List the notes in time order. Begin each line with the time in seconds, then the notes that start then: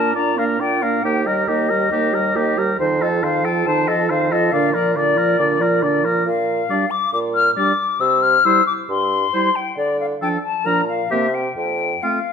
Already playing: A#2 A#3 D4 A#4 A5
0.15 A#2 D4 F4 D5 A#5
0.38 A#3 D4 A#4 F5
0.60 A#2 D4 F4 D5 G5
0.82 A#3 D4 A#4 F5
1.03 D#2 A#3 D#4 G4 G5
1.26 G3 G4 A#4 D#5
1.48 D#2 A#3 D#4 G4 D#5
1.69 G3 G4 A#4
1.91 D#2 A#3 D#4 G4
2.13 G3 G4 A#4
2.35 D#2 A#3 D#4 G4
2.57 G3 G4 A#4
2.79 F2 D#3 D#4 C5
3.01 F3 F4 A4 D#5
3.23 F2 D#3 D#4 C5 F5
3.44 F3 F4 A4 G5
3.66 F2 D#3 D#4 C5 A5
3.87 F3 F4 A4 D#5
4.09 F2 D#3 D#4 C5 F5
4.31 F3 F4 A4 D#5
4.52 A#2 D3 D4 D5 F5
4.74 F3 F4 A#4 D5
4.95 A#2 D3 D4 D5
5.16 F3 F4 A#4
5.39 A#2 D3 D4 D5
5.61 F3 F4 A#4
5.82 A#2 D3 D4 D5
6.04 F3 F4 A#4
6.26 A#2 F5
6.69 G3 D4 D5
6.91 D6
7.13 A#2 D6
7.35 F6
7.56 G3 D4 D5 D6
8.00 C3 E6
8.22 F6
8.45 G3 E4 C5 E6
8.67 D6
8.89 G2 C6
9.33 G3 E4 C5
9.56 G5
9.77 D3 D5
10.00 F5
10.22 F3 D4 A4 G5
10.44 A5
10.66 A#2 F3 D4 A#4 A#5
10.88 F5
11.11 C3 A#3 C4 G4 E5
11.34 G5
11.56 F2 G5
12.03 A3 C4 F4 F5